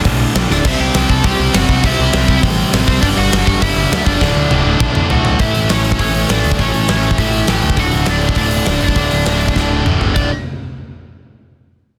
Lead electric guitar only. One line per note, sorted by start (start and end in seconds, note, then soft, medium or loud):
0.51 0.65 D4 medium
0.51 0.67 D5 medium
0.66 0.79 E4 medium
0.66 0.80 E5 loud
0.80 1.07 G4 medium
0.80 1.11 G5 loud
1.10 1.24 A4 medium
1.10 1.25 A5 loud
1.24 1.52 G4 medium
1.24 1.52 G5 medium
1.55 1.82 F#4 medium
1.55 1.85 F#5 loud
1.86 2.41 E4 medium
1.86 2.40 E5 medium
2.88 3.01 C4 medium
2.88 3.01 C5 medium
3.01 3.07 D4 medium
3.01 3.06 D5 loud
3.18 3.46 F#4 medium
3.18 3.45 F#5 loud
3.47 3.61 F#4 medium
3.47 3.61 F#5 loud
3.62 4.03 E4 medium
3.62 4.03 E5 loud
4.05 5.06 D4 medium
4.05 5.05 D5 medium
5.11 5.38 F#4 medium
5.11 5.40 F#5 loud
5.40 5.68 E4 medium
5.40 5.71 E5 medium
5.69 5.97 C#4 medium
5.69 6.00 C#5 medium
6.00 6.27 C#4 medium
6.00 6.28 C#5 medium
6.30 6.57 D4 medium
6.30 6.60 D5 medium
6.60 6.87 C#4 medium
6.60 6.87 C#5 medium
6.89 7.16 C#4 medium
6.89 7.20 C#5 medium
7.18 7.46 E4 medium
7.18 7.46 E5 loud
7.49 7.76 G4 medium
7.49 7.79 G5 medium
7.78 8.06 F#4 medium
7.78 8.09 F#5 loud
8.08 8.35 D4 medium
8.08 8.36 D5 medium
8.38 8.79 D4 medium
8.38 8.83 D5 medium
8.83 9.83 D4 medium
8.83 9.83 D5 medium
10.15 10.29 D5 medium